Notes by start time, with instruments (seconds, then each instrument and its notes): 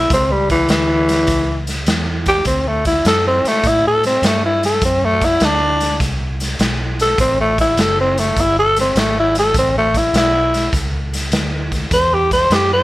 Already playing: tenor saxophone E4
0.10 fingered electric bass C#2, tenor saxophone C4, kick, snare, closed hi-hat
0.32 tenor saxophone G3
0.50 tenor saxophone E3, kick, snare, closed hi-hat
0.69 fingered electric bass D2, tenor saxophone E3, snare, closed hi-hat
1.09 snare, closed hi-hat
1.27 fingered electric bass C#2, kick, snare, closed hi-hat
1.67 snare, closed hi-hat
1.86 fingered electric bass E2, snare, closed hi-hat
2.26 tenor saxophone G4, kick, snare, closed hi-hat
2.45 fingered electric bass D2, tenor saxophone C4, kick, snare, closed hi-hat
2.67 tenor saxophone A3
2.85 tenor saxophone E4, kick, snare, closed hi-hat
3.05 fingered electric bass F#2, tenor saxophone A4, snare, closed hi-hat
3.28 tenor saxophone C4
3.45 tenor saxophone A3, muted fingered electric bass stroke, snare, closed hi-hat
3.63 fingered electric bass A2, kick, snare, closed hi-hat
3.68 tenor saxophone E4
3.87 tenor saxophone A4
4.03 tenor saxophone C4, snare, closed hi-hat
4.22 fingered electric bass G2, snare, closed hi-hat
4.26 tenor saxophone A3
4.45 tenor saxophone E4
4.63 tenor saxophone A4, snare, closed hi-hat
4.81 fingered electric bass F#2, tenor saxophone C4, kick, snare, closed hi-hat
5.05 tenor saxophone A3
5.21 tenor saxophone E4, kick, snare, closed hi-hat
5.40 fingered electric bass D2, snare, closed hi-hat
5.45 tenor saxophone D4
5.80 snare, closed hi-hat
6.00 fingered electric bass C2, kick, snare, closed hi-hat
6.40 snare, closed hi-hat
6.59 fingered electric bass B1, snare, closed hi-hat
6.99 tenor saxophone A4, snare, closed hi-hat
7.18 fingered electric bass A1, tenor saxophone C4, kick, snare, closed hi-hat
7.40 tenor saxophone A3
7.58 tenor saxophone E4, kick, snare, closed hi-hat
7.77 fingered electric bass F#1, tenor saxophone A4, snare, closed hi-hat
8.00 tenor saxophone C4
8.18 tenor saxophone A3, snare, closed hi-hat
8.36 fingered electric bass G1, kick, snare, closed hi-hat
8.40 tenor saxophone E4
8.59 tenor saxophone A4
8.76 snare, closed hi-hat
8.81 tenor saxophone C4
8.95 fingered electric bass G#1, tenor saxophone A3, snare, closed hi-hat
9.20 tenor saxophone E4
9.35 tenor saxophone A4, snare, closed hi-hat
9.54 fingered electric bass A1, kick, snare, closed hi-hat
9.59 tenor saxophone C4
9.78 tenor saxophone A3
9.94 tenor saxophone E4, kick, snare, closed hi-hat
10.13 fingered electric bass B1, tenor saxophone E4, snare, closed hi-hat
10.54 snare, closed hi-hat
10.73 fingered electric bass C#2, kick, snare, closed hi-hat
11.13 snare, closed hi-hat
11.32 fingered electric bass D2, snare, closed hi-hat
11.72 kick, snare, closed hi-hat
11.91 fingered electric bass E2, tenor saxophone C5, kick, snare, closed hi-hat
12.14 tenor saxophone G4
12.31 tenor saxophone C5, kick, snare, closed hi-hat
12.50 fingered electric bass F#2, tenor saxophone G4, snare, closed hi-hat
12.73 tenor saxophone C5